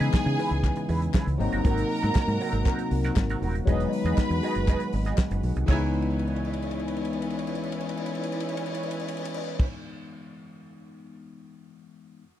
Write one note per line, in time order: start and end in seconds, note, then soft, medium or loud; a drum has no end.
0.00 1.38 C#3 medium
0.00 0.10 C#3 medium
0.00 1.36 E3 medium
0.00 1.38 E3 medium
0.00 1.36 G#3 medium
0.00 1.36 B3 medium
0.00 1.38 B3 medium
0.00 1.40 D#4 medium
0.00 0.14 E4 medium
0.00 1.11 G#4 loud
0.00 0.14 G#4 medium
0.00 0.14 B4 medium
0.00 1.11 G#5 loud
0.00 closed hi-hat soft
0.14 kick loud
0.14 snare loud
0.14 clap medium
0.26 0.35 C#3 loud
0.26 muted clean electric guitar stroke soft
0.26 closed hi-hat soft
0.38 0.55 E4 medium
0.38 0.51 G#4 medium
0.38 0.50 B4 loud
0.38 open hi-hat medium
0.51 0.69 C#2 medium
0.51 muted clean electric guitar stroke soft
0.51 closed hi-hat soft
0.64 kick loud
0.64 clap medium
0.64 closed hi-hat medium
0.76 muted clean electric guitar stroke soft
0.76 closed hi-hat soft
0.89 1.07 E2 medium
0.89 1.06 E4 medium
0.89 1.01 G#4 medium
0.89 1.01 B4 medium
0.89 open hi-hat medium
1.02 muted clean electric guitar stroke soft
1.02 closed hi-hat soft
1.14 1.31 E4 medium
1.14 1.27 G#4 loud
1.14 1.26 B4 medium
1.14 kick loud
1.14 snare loud
1.14 clap loud
1.27 1.36 C#2 medium
1.27 muted clean electric guitar stroke medium
1.27 closed hi-hat soft
1.38 1.49 G#1 loud
1.38 3.65 C3 medium
1.38 3.37 F#3 medium
1.38 3.37 A#3 medium
1.38 3.65 A#3 medium
1.38 3.38 C4 medium
1.38 3.38 D#4 medium
1.38 5.65 F#4 medium
1.38 3.37 A#4 loud
1.38 3.37 A#5 loud
1.38 muted clean electric guitar stroke soft
1.38 open hi-hat medium
1.53 1.62 G1 medium
1.53 1.64 C4 soft
1.53 1.65 F#4 medium
1.53 1.65 A#4 medium
1.53 closed hi-hat soft
1.64 1.83 G#1 loud
1.64 1.88 C4 medium
1.64 1.89 F#4 loud
1.64 1.89 A#4 loud
1.64 kick loud
1.64 closed hi-hat medium
1.78 closed hi-hat medium
1.90 muted clean electric guitar stroke soft
1.90 open hi-hat medium
2.02 2.12 G#2 medium
2.02 2.16 C4 medium
2.02 2.16 F#4 medium
2.02 2.16 A#4 medium
2.02 closed hi-hat soft
2.15 muted fingered electric bass stroke soft
2.15 kick loud
2.15 snare loud
2.15 clap medium
2.28 2.37 G#2 loud
2.28 muted clean electric guitar stroke soft
2.28 closed hi-hat soft
2.41 2.57 C4 medium
2.41 2.54 F#4 medium
2.41 2.53 A#4 loud
2.41 open hi-hat medium
2.53 2.62 G#1 medium
2.53 muted clean electric guitar stroke soft
2.53 closed hi-hat medium
2.66 2.82 C4 medium
2.66 2.79 F#4 medium
2.66 2.78 A#4 medium
2.66 kick loud
2.66 clap medium
2.66 closed hi-hat medium
2.79 muted clean electric guitar stroke medium
2.79 closed hi-hat soft
2.91 3.09 C2 loud
2.91 muted clean electric guitar stroke soft
2.91 open hi-hat medium
3.04 3.16 C4 medium
3.04 3.16 F#4 medium
3.04 3.17 A#4 medium
3.04 snare soft
3.04 closed hi-hat soft
3.16 3.34 G#1 medium
3.16 muted clean electric guitar stroke soft
3.16 kick loud
3.16 snare loud
3.16 clap loud
3.30 3.42 C4 medium
3.30 3.42 F#4 medium
3.30 3.43 A#4 medium
3.30 closed hi-hat soft
3.42 3.60 D#1 medium
3.42 3.55 C4 medium
3.42 3.55 F#4 medium
3.42 3.55 A#4 medium
3.42 open hi-hat medium
3.55 muted clean electric guitar stroke soft
3.55 closed hi-hat soft
3.65 3.85 E1 loud
3.65 5.67 D#3 medium
3.65 5.64 F#3 medium
3.65 5.64 G#3 medium
3.65 5.67 G#3 medium
3.65 5.65 B3 medium
3.65 5.66 D#4 medium
3.65 3.90 F#4 medium
3.65 3.91 G#4 medium
3.65 5.40 B4 loud
3.65 3.91 D#5 loud
3.65 5.40 B5 loud
3.65 kick loud
3.65 closed hi-hat medium
3.80 closed hi-hat soft
3.93 open hi-hat medium
4.04 4.14 E2 loud
4.04 4.19 F#4 medium
4.04 4.18 G#4 medium
4.04 4.18 D#5 medium
4.04 closed hi-hat soft
4.18 kick medium
4.18 snare loud
4.18 clap medium
4.30 4.39 E2 loud
4.30 muted clean electric guitar stroke soft
4.30 closed hi-hat soft
4.43 4.59 F#4 medium
4.43 4.56 G#4 medium
4.43 4.55 D#5 loud
4.43 open hi-hat medium
4.55 4.74 F#1 medium
4.55 muted clean electric guitar stroke soft
4.55 closed hi-hat soft
4.68 4.84 F#4 medium
4.68 4.81 G#4 medium
4.68 4.80 D#5 medium
4.68 kick loud
4.68 clap medium
4.68 closed hi-hat medium
4.80 muted clean electric guitar stroke soft
4.80 closed hi-hat soft
4.93 5.11 G#1 medium
4.93 muted clean electric guitar stroke soft
4.93 open hi-hat medium
5.05 5.18 F#4 soft
5.05 5.18 G#4 medium
5.05 5.18 D#5 medium
5.05 snare soft
5.05 closed hi-hat soft
5.18 muted clean electric guitar stroke soft
5.18 kick loud
5.18 snare loud
5.18 clap loud
5.31 5.40 F#1 medium
5.31 muted clean electric guitar stroke soft
5.31 closed hi-hat soft
5.43 5.52 B1 medium
5.43 open hi-hat medium
5.56 5.65 C2 medium
5.56 muted clean electric guitar stroke soft
5.56 closed hi-hat soft
5.66 9.65 C#2 loud
5.66 9.64 E3 medium
5.66 9.65 G#3 medium
5.66 9.66 C#4 medium
5.66 9.69 E4 medium
5.66 9.65 E4 medium
5.66 9.66 B4 medium
5.66 9.65 C#5 medium
5.66 9.65 G#5 medium
5.66 kick loud
5.66 clap medium
5.66 crash medium
5.70 9.66 E3 medium
5.70 9.66 B3 medium
5.70 9.67 D#4 medium
5.70 9.71 G#4 medium
5.70 9.72 B4 medium
5.93 crash soft
6.02 ride soft
6.10 crash soft
6.19 ride medium
6.27 crash medium
6.36 ride soft
6.45 crash medium
6.53 ride medium
6.62 crash medium
6.71 ride medium
6.79 crash medium
6.88 ride medium
6.96 crash medium
7.05 ride medium
7.13 crash medium
7.22 ride medium
7.30 crash medium
7.39 ride medium
7.47 crash medium
7.55 ride medium
7.63 crash medium
7.72 ride medium
7.80 crash medium
7.89 ride medium
7.97 crash medium
8.06 ride medium
8.15 crash medium
8.23 ride medium
8.32 crash medium
8.40 ride medium
8.49 crash medium
8.57 ride medium
8.66 crash medium
8.75 ride medium
8.83 crash medium
8.91 ride medium
8.99 crash medium
9.08 ride medium
9.17 crash medium
9.25 ride medium
9.34 crash loud
9.59 kick loud
9.59 crash loud